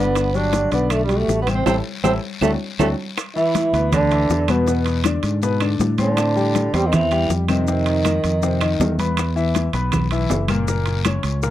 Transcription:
Already playing: G1 D3 D4 D5
0.00 B3
0.15 high bongo, high conga, high timbale, long guiro, claves, maracas
0.34 F#3 D4 F#4 G4, high bongo, high conga, maracas
0.53 F#3 F#4 G4, high bongo, high conga, high timbale, short guiro, maracas
0.72 B1 D3 B3 D4 D5, high conga, high timbale, short guiro, maracas
0.90 A3, high bongo, high conga, high timbale, long guiro, claves, maracas
1.04 G3
1.09 G3 F#4 G4, high bongo, high conga, high timbale, maracas
1.17 A3
1.28 A1, high bongo, low bongo, high conga, short guiro, maracas
1.42 B3
1.47 C3 C4 C5, high bongo, high conga, high timbale, short guiro, claves, maracas
1.55 C4
1.66 A1 C4 E4 G4 A4, low bongo, high conga, high timbale, long guiro, claves, maracas
2.03 A1 C4 E4 G4 A4, low bongo, high conga, high timbale, long guiro, claves, maracas
2.41 D2 A3 C4 D4 F#4, low bongo, high conga, high timbale, long guiro, claves, maracas
2.79 D2 A3 C4 D4 F#4, low bongo, high conga, high timbale, long guiro, claves, maracas
3.17 high bongo, high conga, high timbale, long guiro, claves, maracas
3.36 E3 E4 E5, high bongo, high conga, maracas
3.55 high bongo, high conga, high timbale, short guiro, maracas
3.73 D2 B3 B4 B5, high conga, high timbale, short guiro, maracas
3.92 D3 D4, high bongo, high conga, low conga, high timbale, long guiro, claves, maracas
4.11 E3 E4 E5, high bongo, high conga, high timbale, maracas
4.30 E2, high bongo, low bongo, high conga, short guiro, maracas
4.48 B2 B3 B4, high bongo, high conga, high timbale, short guiro, claves, maracas
4.67 B2 B3 B4, high bongo, high conga, long guiro, maracas
4.86 high bongo, high conga, high timbale, maracas
5.04 D3 D4 D5, high bongo, high conga, high timbale, short guiro, claves, maracas
5.23 G#2, high conga, high timbale, short guiro, maracas
5.42 B2 B3 B4, high bongo, high conga, long guiro, maracas
5.60 D3 D4 D5, high bongo, high conga, high timbale, claves, maracas
5.79 A2, high bongo, low bongo, high conga, short guiro, maracas
5.98 D3 C4 D4 C5 C6, high bongo, high conga, high timbale, short guiro, maracas
6.17 high bongo, high conga, high timbale, long guiro, claves, maracas
6.36 G3 G4 G5, high bongo, high conga, maracas
6.55 high bongo, high conga, high timbale, short guiro, maracas
6.73 E2 G3 C4 G4 C5 C6, high conga, high timbale, short guiro, maracas
6.86 D#3 D#4
6.92 E3 E4, high bongo, high conga, low conga, high timbale, long guiro, claves, maracas
7.11 G3 G4 G5, high bongo, high conga, high timbale, maracas
7.30 F2, high bongo, low bongo, high conga, short guiro, maracas
7.48 C3 D#3 C4 D#4 C5, high bongo, high conga, high timbale, short guiro, claves, maracas
7.67 C3 C4 C5, high bongo, high conga, long guiro, maracas
7.86 high bongo, high timbale, maracas
8.05 D#3 D#4 D#5, high bongo, high conga, high timbale, short guiro, claves, maracas
8.24 F2, high conga, high timbale, short guiro, maracas
8.43 C3 C4 C5, high bongo, high conga, long guiro, maracas
8.61 D#3 D#4 D#5, high bongo, high conga, high timbale, claves, maracas
8.80 E2, high bongo, low bongo, high conga, low timbale, short guiro, maracas
8.99 B3 B4 B5, high bongo, high conga, high timbale, short guiro, maracas
9.17 high bongo, high conga, high timbale, long guiro, claves, maracas
9.36 E3 E4 E5, high bongo, high conga, maracas
9.54 high bongo, high conga, high timbale, short guiro, maracas
9.73 B1 B3 B4 B5, high conga, high timbale, short guiro, maracas
9.92 high bongo, high conga, low conga, high timbale, long guiro, claves, maracas
10.11 E3 E4 E5, high bongo, high conga, high timbale, maracas
10.29 F#1, high bongo, low bongo, high conga, low timbale, short guiro, maracas
10.48 A#2 A#3 A#4, high bongo, high conga, high timbale, short guiro, claves, maracas
10.67 A#2 A#3 A#4, high bongo, high conga, long guiro, maracas
10.86 high bongo, high conga, high timbale, maracas
11.05 C#3 C#4 C#5, high bongo, high conga, high timbale, short guiro, claves, maracas
11.23 C#2, high conga, high timbale, short guiro, maracas
11.42 A#2 A#3 A#4, high bongo, high conga, long guiro, maracas

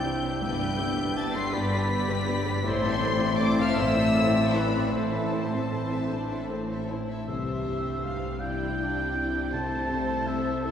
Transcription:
Already playing: C2 C3 E3 C4 D4 E4 C5 G5 G6
0.03 E3 D4 E4 D5 E5
0.23 G3 D4 G4 C5
0.41 G1 G2 D3 B3 G4 B4 D5 E5 G5 G6
0.60 G3 G4 B4
0.79 B3 G4 B4 D5
0.97 G3 G4 B4
1.16 B3 D4 G4 B4 D5 A5 A6
1.35 G3 G4 B4 C6 C7
1.53 G1 G2 B3 G4 B4 D5 B5 B6
1.73 G3 G4 B4
1.91 B3 G4 B4 D5
2.10 G3 G4 B4
2.27 B3 G4 B4 D5
2.46 G3 G4 B4
2.64 A1 A2 E3 A3 C4 E4 C5 C6
2.83 C4 A4 E5
3.02 A3 E4 C5
3.21 C4 A4 E5
3.38 A3 C4 E4 C5 D5 D6
3.59 C4 A4 E5 F5 F6
3.77 A1 A2 E3 A3 C4 E4 C5 E5 E6
3.97 C4 A4 E5
4.15 A3 E4 A4 C5
4.34 C4 A4 E5
4.53 A3 E4 B4 C5 B5
4.73 C4 A4 E5
4.92 A1 A2 E3 A3 C4 E4 A4 C5 A5
5.13 C4 A4 E5
5.32 A3 E4 C5
5.52 C4 A4 E5
5.71 A3 C4 E4 C5
5.91 C4 A4 E5
6.10 A1 A2 D4 E4 C5
6.31 A4 E5
6.50 C4 A4 C5
6.70 A4 E5
6.89 E4 C5
7.09 A4 E5
7.27 C2 C3 E3 G3 G4 C5 E5
7.66 G2
8.04 G3 F5
8.40 D4 E4 D5 G5
8.79 D4 E4
9.16 D4 E4
9.52 C2 A3 A4 C5 A5
9.91 C3
10.27 C4 E5
10.64 C4 E4 A4 C5 E5

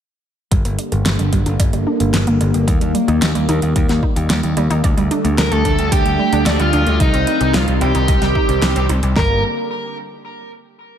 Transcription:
0.51 G1 D3 G3 A#3, kick, closed hi-hat
0.65 G1 A#3, closed hi-hat
0.78 D4, closed hi-hat
0.92 G1 G4, closed hi-hat
1.06 G1 G3, snare, closed hi-hat
1.19 G1 G3, closed hi-hat
1.33 G1 G3, kick, closed hi-hat
1.46 G1 D4, closed hi-hat
1.60 G1 D5, kick, closed hi-hat
1.73 G1 G3, closed hi-hat
1.87 D4
2.00 G1 A#3, closed hi-hat
2.14 G1 G3, snare, closed hi-hat
2.27 G1 A#3, closed hi-hat
2.41 G1 D4, closed hi-hat
2.54 G1 G4, closed hi-hat
2.68 D#2 D#3 G3, kick, closed hi-hat
2.81 D#2 G3, closed hi-hat
2.95 G3, closed hi-hat
3.08 D#2 D#4, closed hi-hat
3.22 D#2 D#5, snare, closed hi-hat
3.35 D#2 G3, closed hi-hat
3.49 D#2 D#4, closed hi-hat
3.62 D#2 A#3, closed hi-hat
3.76 D#2 G3, kick, closed hi-hat
3.89 D#2 A#3, snare, closed hi-hat
4.03 D#4, kick
4.16 D#2 G4, closed hi-hat
4.30 D#2 G3, snare, closed hi-hat
4.43 D#2 G3, closed hi-hat
4.57 D#2 G3, closed hi-hat
4.70 D#2 D#4, closed hi-hat
4.84 D2 D3 A3 D5, kick, closed hi-hat
4.97 D2 G3, closed hi-hat
5.11 D4, closed hi-hat
5.25 D2 A3, closed hi-hat
5.38 D2 G3 A#4, snare, closed hi-hat
5.52 D2 A3 A4, closed hi-hat
5.65 D2 D4, kick, closed hi-hat
5.79 D2 G4, closed hi-hat
5.92 D2 G3 G4, kick, closed hi-hat
6.06 D2 G3, closed hi-hat
6.19 G3
6.33 D2 D4, closed hi-hat
6.46 D2 D4 D5, snare, closed hi-hat
6.60 D2 G3 F4, closed hi-hat
6.73 D2 D4, closed hi-hat
6.87 D2 A3, closed hi-hat
7.00 C2 D#3 G3 C4 D#4, kick, closed hi-hat
7.14 C2 C4, closed hi-hat
7.27 D#4, closed hi-hat
7.41 C2 G4, closed hi-hat
7.54 C2 G3 F4, snare, closed hi-hat
7.68 C2 G3, closed hi-hat
7.81 C2 G3 G4, closed hi-hat
7.95 C2 D#4, closed hi-hat
8.08 C2 D#5, kick, closed hi-hat
8.22 C2 G3, snare, closed hi-hat
8.35 D#4, kick
8.49 C2 C4, closed hi-hat
8.62 C2 G3, snare, closed hi-hat
8.76 C2 C4, closed hi-hat
8.89 C2 D#4, closed hi-hat
9.03 C2 G4, closed hi-hat
9.16 G1 D3 G3 A#3 A#4, kick, snare

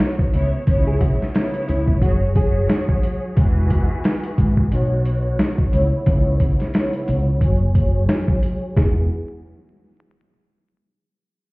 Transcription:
Already playing: B2 B3 E4 F#4 C#5
0.00 snare, closed hi-hat
0.19 kick
0.32 C#2 C#3 B3 E4 C#5, closed hi-hat
0.65 C#2 C#3 B3 E4 C#5, kick, closed hi-hat
0.87 G#4
1.00 F#4, kick, closed hi-hat
1.22 snare
1.35 C#3 B3 E4 C#5, snare, closed hi-hat
1.54 closed hi-hat
1.68 C#2 E4, closed hi-hat
1.88 kick
2.01 F#1 F#3 F#4 G#4 C#5, kick, closed hi-hat
2.35 F#3 F#4 G#4 C#5, kick, closed hi-hat
2.70 snare, closed hi-hat
2.89 kick
3.03 closed hi-hat
3.35 E1 E3 B3 F#4 G#4, kick, closed hi-hat
3.70 kick, closed hi-hat
4.04 snare, closed hi-hat
4.23 closed hi-hat
4.38 G#1, kick, closed hi-hat
4.57 kick
4.71 B1 B2 B3 F#4 C#5, closed hi-hat
5.05 closed hi-hat
5.39 snare, closed hi-hat
5.58 kick
5.71 C#2 C#3 B3 E4 C#5, closed hi-hat
6.05 C#2 C#3 B3 E4 C#5, kick, closed hi-hat
6.40 kick, closed hi-hat
6.60 snare, closed hi-hat
6.74 C#3 B3 E4 C#5, snare, closed hi-hat
6.93 closed hi-hat
7.08 C#2, closed hi-hat
7.41 F#1 F#3 F#4 G#4 C#5, kick, closed hi-hat
7.75 F#3 F#4 G#4 C#5, kick, closed hi-hat
8.09 snare, closed hi-hat
8.28 kick
8.43 closed hi-hat
8.76 E1 E3 B3 F#4 G#4, kick, snare

